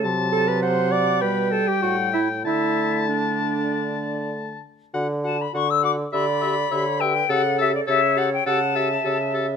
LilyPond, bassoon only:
\new Staff \with { instrumentName = "Bassoon" } { \clef bass \time 4/4 \key d \major \tempo 4 = 101 c2 b,8 r8 a,4 | d2.~ d8 r8 | d4 d4 d4 d4 | cis4 cis4 cis4 cis4 | }